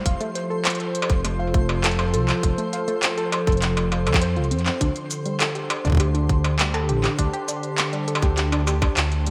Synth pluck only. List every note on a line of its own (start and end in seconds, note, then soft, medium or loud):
0.06 0.15 F5 medium
0.21 0.30 A3 loud
0.35 0.41 C5 medium
0.50 0.64 A4 loud
0.65 0.71 C5 loud
0.80 0.86 A4 medium
1.25 1.39 A3 medium
1.39 1.49 F5 medium
1.54 1.64 A3 loud
1.69 1.75 C5 medium
1.84 1.98 A4 medium
1.99 2.04 C5 loud
2.14 2.19 A4 medium
2.58 2.72 A3 medium
2.73 2.82 F5 medium
2.88 2.97 A3 loud
3.03 3.08 C5 medium
3.18 3.32 A4 loud
3.32 3.38 C5 loud
3.47 3.53 A4 medium
3.92 4.06 F4 medium
4.07 4.21 A4 medium
4.22 4.36 C5 medium
4.36 4.42 F4 medium
4.51 4.57 C4 medium
4.66 4.72 C4 medium
4.81 4.87 D4 medium
5.26 5.40 G3 medium
5.40 5.50 A4 medium
5.55 5.65 G4 medium
5.70 5.76 G4 medium
5.85 5.99 D4 loud
6.00 6.05 G4 loud
6.15 6.20 D4 medium
6.59 6.73 G3 medium
6.74 6.83 A4 medium
6.89 6.98 G4 medium
7.04 7.09 G4 medium
7.19 7.33 D4 loud
7.33 7.39 G4 loud
7.48 7.54 D4 medium
7.93 8.07 G3 medium
8.08 8.17 A4 medium
8.23 8.32 G4 medium
8.37 8.43 G4 medium
8.52 8.66 D4 loud
8.67 8.73 G4 loud
8.82 8.88 D4 medium
9.27 9.30 G3 medium